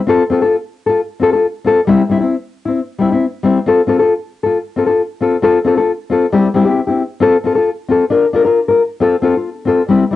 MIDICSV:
0, 0, Header, 1, 2, 480
1, 0, Start_track
1, 0, Tempo, 445765
1, 94, Time_signature, 4, 2, 24, 8
1, 10938, End_track
2, 0, Start_track
2, 0, Title_t, "Nylon-string guitar"
2, 0, Program_c, 0, 24
2, 74, Note_on_c, 0, 60, 66
2, 89, Note_on_c, 0, 65, 77
2, 99, Note_on_c, 0, 69, 84
2, 232, Note_off_c, 0, 60, 0
2, 239, Note_off_c, 0, 65, 0
2, 244, Note_off_c, 0, 69, 0
2, 322, Note_on_c, 0, 60, 60
2, 335, Note_on_c, 0, 65, 66
2, 348, Note_on_c, 0, 69, 76
2, 437, Note_off_c, 0, 69, 0
2, 449, Note_on_c, 0, 69, 53
2, 453, Note_off_c, 0, 60, 0
2, 460, Note_off_c, 0, 65, 0
2, 474, Note_on_c, 0, 65, 43
2, 595, Note_off_c, 0, 69, 0
2, 607, Note_off_c, 0, 65, 0
2, 929, Note_on_c, 0, 69, 64
2, 959, Note_on_c, 0, 65, 47
2, 1075, Note_off_c, 0, 69, 0
2, 1090, Note_off_c, 0, 65, 0
2, 1288, Note_on_c, 0, 60, 60
2, 1308, Note_on_c, 0, 65, 63
2, 1322, Note_on_c, 0, 69, 70
2, 1415, Note_off_c, 0, 69, 0
2, 1417, Note_off_c, 0, 60, 0
2, 1427, Note_off_c, 0, 65, 0
2, 1428, Note_on_c, 0, 69, 54
2, 1454, Note_on_c, 0, 65, 40
2, 1565, Note_off_c, 0, 69, 0
2, 1578, Note_off_c, 0, 65, 0
2, 1771, Note_on_c, 0, 60, 58
2, 1787, Note_on_c, 0, 65, 63
2, 1798, Note_on_c, 0, 69, 68
2, 1922, Note_off_c, 0, 60, 0
2, 1931, Note_off_c, 0, 65, 0
2, 1936, Note_off_c, 0, 69, 0
2, 2014, Note_on_c, 0, 55, 80
2, 2026, Note_on_c, 0, 60, 82
2, 2033, Note_on_c, 0, 64, 92
2, 2164, Note_off_c, 0, 55, 0
2, 2170, Note_off_c, 0, 60, 0
2, 2174, Note_off_c, 0, 64, 0
2, 2253, Note_on_c, 0, 55, 58
2, 2266, Note_on_c, 0, 60, 62
2, 2275, Note_on_c, 0, 64, 68
2, 2360, Note_off_c, 0, 64, 0
2, 2373, Note_on_c, 0, 64, 52
2, 2381, Note_off_c, 0, 55, 0
2, 2387, Note_off_c, 0, 60, 0
2, 2398, Note_on_c, 0, 60, 44
2, 2519, Note_off_c, 0, 64, 0
2, 2532, Note_off_c, 0, 60, 0
2, 2857, Note_on_c, 0, 64, 60
2, 2886, Note_on_c, 0, 60, 44
2, 3002, Note_off_c, 0, 64, 0
2, 3016, Note_off_c, 0, 60, 0
2, 3215, Note_on_c, 0, 55, 62
2, 3232, Note_on_c, 0, 60, 66
2, 3243, Note_on_c, 0, 64, 74
2, 3343, Note_off_c, 0, 55, 0
2, 3345, Note_off_c, 0, 64, 0
2, 3351, Note_off_c, 0, 60, 0
2, 3358, Note_on_c, 0, 64, 54
2, 3379, Note_on_c, 0, 60, 43
2, 3492, Note_off_c, 0, 64, 0
2, 3503, Note_off_c, 0, 60, 0
2, 3693, Note_on_c, 0, 55, 65
2, 3705, Note_on_c, 0, 60, 66
2, 3722, Note_on_c, 0, 64, 73
2, 3846, Note_off_c, 0, 55, 0
2, 3852, Note_off_c, 0, 60, 0
2, 3860, Note_off_c, 0, 64, 0
2, 3942, Note_on_c, 0, 60, 72
2, 3957, Note_on_c, 0, 65, 81
2, 3963, Note_on_c, 0, 69, 82
2, 4090, Note_off_c, 0, 60, 0
2, 4097, Note_off_c, 0, 65, 0
2, 4100, Note_off_c, 0, 69, 0
2, 4166, Note_on_c, 0, 60, 60
2, 4176, Note_on_c, 0, 65, 63
2, 4187, Note_on_c, 0, 69, 68
2, 4284, Note_off_c, 0, 69, 0
2, 4297, Note_on_c, 0, 69, 53
2, 4299, Note_off_c, 0, 60, 0
2, 4304, Note_off_c, 0, 65, 0
2, 4326, Note_on_c, 0, 65, 42
2, 4443, Note_off_c, 0, 69, 0
2, 4457, Note_off_c, 0, 65, 0
2, 4772, Note_on_c, 0, 69, 61
2, 4804, Note_on_c, 0, 65, 47
2, 4920, Note_off_c, 0, 69, 0
2, 4936, Note_off_c, 0, 65, 0
2, 5126, Note_on_c, 0, 60, 60
2, 5141, Note_on_c, 0, 65, 65
2, 5149, Note_on_c, 0, 69, 59
2, 5223, Note_off_c, 0, 69, 0
2, 5236, Note_on_c, 0, 69, 53
2, 5252, Note_off_c, 0, 65, 0
2, 5260, Note_off_c, 0, 60, 0
2, 5265, Note_on_c, 0, 65, 45
2, 5392, Note_off_c, 0, 69, 0
2, 5407, Note_off_c, 0, 65, 0
2, 5606, Note_on_c, 0, 60, 50
2, 5616, Note_on_c, 0, 65, 66
2, 5624, Note_on_c, 0, 69, 68
2, 5762, Note_off_c, 0, 60, 0
2, 5768, Note_off_c, 0, 65, 0
2, 5772, Note_off_c, 0, 69, 0
2, 5838, Note_on_c, 0, 60, 78
2, 5848, Note_on_c, 0, 65, 86
2, 5855, Note_on_c, 0, 69, 83
2, 5999, Note_off_c, 0, 60, 0
2, 6004, Note_off_c, 0, 65, 0
2, 6007, Note_off_c, 0, 69, 0
2, 6079, Note_on_c, 0, 60, 66
2, 6093, Note_on_c, 0, 65, 63
2, 6107, Note_on_c, 0, 69, 69
2, 6202, Note_off_c, 0, 69, 0
2, 6215, Note_on_c, 0, 69, 53
2, 6216, Note_off_c, 0, 60, 0
2, 6223, Note_off_c, 0, 65, 0
2, 6240, Note_on_c, 0, 65, 47
2, 6362, Note_off_c, 0, 69, 0
2, 6375, Note_off_c, 0, 65, 0
2, 6566, Note_on_c, 0, 60, 60
2, 6581, Note_on_c, 0, 65, 71
2, 6594, Note_on_c, 0, 69, 77
2, 6722, Note_off_c, 0, 60, 0
2, 6730, Note_off_c, 0, 65, 0
2, 6736, Note_off_c, 0, 69, 0
2, 6811, Note_on_c, 0, 55, 68
2, 6814, Note_on_c, 0, 60, 65
2, 6825, Note_on_c, 0, 64, 70
2, 6829, Note_on_c, 0, 67, 70
2, 6965, Note_off_c, 0, 55, 0
2, 6966, Note_off_c, 0, 60, 0
2, 6972, Note_off_c, 0, 64, 0
2, 6974, Note_off_c, 0, 67, 0
2, 7042, Note_on_c, 0, 55, 61
2, 7047, Note_on_c, 0, 60, 69
2, 7061, Note_on_c, 0, 67, 72
2, 7062, Note_on_c, 0, 64, 70
2, 7147, Note_off_c, 0, 67, 0
2, 7160, Note_on_c, 0, 67, 51
2, 7164, Note_off_c, 0, 64, 0
2, 7170, Note_off_c, 0, 60, 0
2, 7177, Note_off_c, 0, 55, 0
2, 7177, Note_on_c, 0, 64, 47
2, 7183, Note_on_c, 0, 60, 45
2, 7314, Note_off_c, 0, 67, 0
2, 7322, Note_off_c, 0, 64, 0
2, 7326, Note_off_c, 0, 60, 0
2, 7397, Note_on_c, 0, 67, 53
2, 7411, Note_on_c, 0, 64, 54
2, 7424, Note_on_c, 0, 60, 39
2, 7552, Note_off_c, 0, 67, 0
2, 7560, Note_off_c, 0, 64, 0
2, 7566, Note_off_c, 0, 60, 0
2, 7755, Note_on_c, 0, 60, 75
2, 7767, Note_on_c, 0, 65, 79
2, 7777, Note_on_c, 0, 69, 92
2, 7916, Note_off_c, 0, 60, 0
2, 7922, Note_off_c, 0, 65, 0
2, 7927, Note_off_c, 0, 69, 0
2, 8010, Note_on_c, 0, 60, 62
2, 8025, Note_on_c, 0, 65, 61
2, 8039, Note_on_c, 0, 69, 75
2, 8116, Note_off_c, 0, 69, 0
2, 8129, Note_on_c, 0, 69, 52
2, 8140, Note_off_c, 0, 60, 0
2, 8145, Note_off_c, 0, 65, 0
2, 8158, Note_on_c, 0, 65, 47
2, 8278, Note_off_c, 0, 69, 0
2, 8292, Note_off_c, 0, 65, 0
2, 8489, Note_on_c, 0, 60, 60
2, 8503, Note_on_c, 0, 65, 71
2, 8519, Note_on_c, 0, 69, 71
2, 8643, Note_off_c, 0, 60, 0
2, 8650, Note_off_c, 0, 65, 0
2, 8658, Note_off_c, 0, 69, 0
2, 8722, Note_on_c, 0, 62, 67
2, 8730, Note_on_c, 0, 65, 69
2, 8740, Note_on_c, 0, 70, 73
2, 8879, Note_off_c, 0, 62, 0
2, 8883, Note_off_c, 0, 65, 0
2, 8888, Note_off_c, 0, 70, 0
2, 8970, Note_on_c, 0, 62, 64
2, 8983, Note_on_c, 0, 65, 61
2, 8998, Note_on_c, 0, 70, 69
2, 9081, Note_off_c, 0, 70, 0
2, 9094, Note_on_c, 0, 70, 60
2, 9100, Note_off_c, 0, 62, 0
2, 9106, Note_off_c, 0, 65, 0
2, 9118, Note_on_c, 0, 65, 51
2, 9240, Note_off_c, 0, 70, 0
2, 9252, Note_off_c, 0, 65, 0
2, 9348, Note_on_c, 0, 70, 56
2, 9370, Note_on_c, 0, 65, 46
2, 9487, Note_off_c, 0, 70, 0
2, 9498, Note_off_c, 0, 65, 0
2, 9692, Note_on_c, 0, 60, 75
2, 9705, Note_on_c, 0, 65, 81
2, 9711, Note_on_c, 0, 69, 74
2, 9843, Note_off_c, 0, 60, 0
2, 9850, Note_off_c, 0, 65, 0
2, 9853, Note_off_c, 0, 69, 0
2, 9926, Note_on_c, 0, 60, 63
2, 9940, Note_on_c, 0, 65, 74
2, 9954, Note_on_c, 0, 69, 70
2, 10057, Note_off_c, 0, 60, 0
2, 10064, Note_off_c, 0, 65, 0
2, 10071, Note_off_c, 0, 69, 0
2, 10087, Note_on_c, 0, 65, 45
2, 10215, Note_off_c, 0, 65, 0
2, 10393, Note_on_c, 0, 60, 60
2, 10413, Note_on_c, 0, 65, 71
2, 10423, Note_on_c, 0, 69, 71
2, 10553, Note_off_c, 0, 60, 0
2, 10563, Note_off_c, 0, 65, 0
2, 10568, Note_off_c, 0, 69, 0
2, 10643, Note_on_c, 0, 55, 66
2, 10656, Note_on_c, 0, 60, 78
2, 10663, Note_on_c, 0, 64, 79
2, 10798, Note_off_c, 0, 55, 0
2, 10804, Note_off_c, 0, 60, 0
2, 10808, Note_off_c, 0, 64, 0
2, 10884, Note_on_c, 0, 55, 60
2, 10900, Note_on_c, 0, 60, 73
2, 10938, Note_off_c, 0, 55, 0
2, 10938, Note_off_c, 0, 60, 0
2, 10938, End_track
0, 0, End_of_file